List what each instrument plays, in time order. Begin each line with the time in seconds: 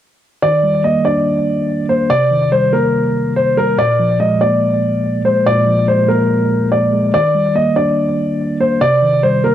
0.42 tine electric piano D#3, grand piano D5
0.63 tine electric piano G3
0.84 tine electric piano A#3, grand piano D#5
1.05 tine electric piano D4, grand piano D5
1.89 tine electric piano A#3, grand piano C5
2.10 tine electric piano C3, grand piano D5
2.31 tine electric piano D#3
2.52 tine electric piano G3, grand piano C5
2.73 tine electric piano A#3, grand piano A#4
3.36 grand piano C5
3.57 tine electric piano G3, grand piano A#4
3.78 tine electric piano A#2, grand piano D5
3.99 tine electric piano F3
4.20 tine electric piano G#3, grand piano D#5
4.41 tine electric piano A#3, grand piano D5
5.25 tine electric piano G#3, grand piano C5
5.46 tine electric piano A#2, grand piano D5
5.66 tine electric piano F3
5.88 tine electric piano G#3, grand piano C5
6.08 tine electric piano A#3, grand piano A#4
6.72 grand piano D5
6.93 tine electric piano G#3
7.14 tine electric piano D#3, grand piano D5
7.35 tine electric piano G3
7.55 tine electric piano A#3, grand piano D#5
7.76 tine electric piano D4, grand piano D5
8.60 tine electric piano A#3, grand piano C5
8.81 tine electric piano C3, grand piano D5
9.02 tine electric piano D#3
9.23 tine electric piano G3, grand piano C5
9.44 tine electric piano A#3, grand piano A#4